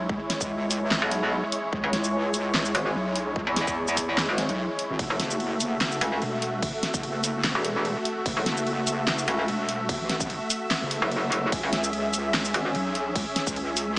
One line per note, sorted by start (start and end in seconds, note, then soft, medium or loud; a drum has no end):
0.00 4.95 G#3 medium
0.00 4.95 E4 medium
0.00 4.95 C#5 medium
0.09 0.19 C#2 loud
0.09 kick loud
0.30 snare medium
0.30 closed hi-hat medium
0.41 1.00 C#2 medium
0.41 kick loud
0.41 shaker medium
0.71 open hi-hat medium
0.71 shaker medium
0.91 snare loud
0.91 clap medium
1.02 1.41 B1 medium
1.11 closed hi-hat medium
1.52 closed hi-hat medium
1.73 1.82 C#2 loud
1.73 kick loud
1.84 1.92 C#2 loud
1.93 2.73 C#2 medium
1.93 snare medium
1.93 closed hi-hat medium
2.04 shaker medium
2.34 open hi-hat loud
2.34 shaker medium
2.54 snare loud
2.54 clap medium
2.65 shaker medium
2.75 2.94 G#1 loud
2.75 closed hi-hat medium
2.95 3.34 B1 loud
3.16 closed hi-hat medium
3.36 3.45 C#2 loud
3.36 kick loud
3.47 3.66 E2 loud
3.56 snare medium
3.56 closed hi-hat medium
3.67 4.27 E2 loud
3.67 kick loud
3.67 shaker medium
3.88 shaker medium
3.97 kick medium
3.97 open hi-hat loud
3.97 shaker medium
4.18 snare loud
4.18 clap medium
4.29 4.47 G#1 loud
4.38 snare medium
4.38 closed hi-hat medium
4.49 4.68 B1 loud
4.49 closed hi-hat soft
4.79 closed hi-hat medium
4.90 4.98 G#1 loud
4.99 5.08 F#1 loud
4.99 11.48 A3 medium
4.99 11.48 F#4 medium
4.99 13.99 E5 medium
4.99 kick loud
4.99 ride medium
5.10 5.18 F#1 medium
5.20 6.00 F#1 medium
5.20 snare medium
5.20 closed hi-hat medium
5.31 shaker medium
5.40 ride soft
5.60 open hi-hat loud
5.60 shaker medium
5.81 snare loud
5.81 clap loud
5.81 ride medium
5.92 shaker medium
6.01 6.20 C#2 loud
6.01 closed hi-hat medium
6.22 6.61 E1 loud
6.22 ride soft
6.42 closed hi-hat medium
6.62 6.72 F#1 medium
6.62 kick loud
6.62 ride medium
6.83 snare medium
6.83 closed hi-hat medium
6.94 7.53 F#1 medium
6.94 kick loud
6.94 shaker medium
7.03 ride soft
7.24 open hi-hat medium
7.24 shaker medium
7.44 snare loud
7.44 clap loud
7.44 ride medium
7.55 7.94 E1 medium
7.65 closed hi-hat medium
7.85 ride soft
8.05 closed hi-hat medium
8.26 8.35 F#1 loud
8.26 kick loud
8.26 ride medium
8.37 8.45 F#1 medium
8.46 9.26 F#1 loud
8.46 snare medium
8.46 closed hi-hat medium
8.57 shaker medium
8.67 ride soft
8.87 open hi-hat medium
8.87 shaker medium
9.07 snare loud
9.07 clap medium
9.07 ride medium
9.18 shaker medium
9.28 9.47 C#2 loud
9.28 closed hi-hat medium
9.48 9.87 E1 loud
9.48 ride soft
9.69 closed hi-hat medium
9.89 9.98 F#1 loud
9.89 kick loud
9.89 ride medium
10.00 10.39 A1 loud
10.09 snare medium
10.09 closed hi-hat medium
10.20 kick loud
10.20 shaker medium
10.30 ride soft
10.50 open hi-hat medium
10.50 shaker medium
10.71 snare loud
10.71 clap medium
10.71 ride medium
10.82 11.00 F#1 loud
10.91 closed hi-hat medium
11.02 11.30 F#1 loud
11.11 ride soft
11.32 11.51 F#1 loud
11.32 closed hi-hat medium
11.52 11.61 C#2 loud
11.52 13.99 C#4 medium
11.52 13.99 G#4 medium
11.52 kick loud
11.52 ride medium
11.63 11.71 C#2 loud
11.73 12.53 C#2 medium
11.73 snare medium
11.73 closed hi-hat medium
11.84 shaker medium
11.93 ride soft
12.13 open hi-hat medium
12.13 shaker medium
12.34 snare loud
12.34 clap medium
12.34 ride medium
12.45 shaker medium
12.54 12.73 G#1 loud
12.54 closed hi-hat medium
12.75 13.14 B1 loud
12.75 ride medium
12.95 closed hi-hat medium
13.15 13.25 C#2 loud
13.15 kick loud
13.15 ride medium
13.36 snare medium
13.36 closed hi-hat medium
13.47 13.99 C#2 medium
13.47 kick loud
13.47 shaker medium
13.56 ride soft
13.77 open hi-hat loud
13.77 shaker medium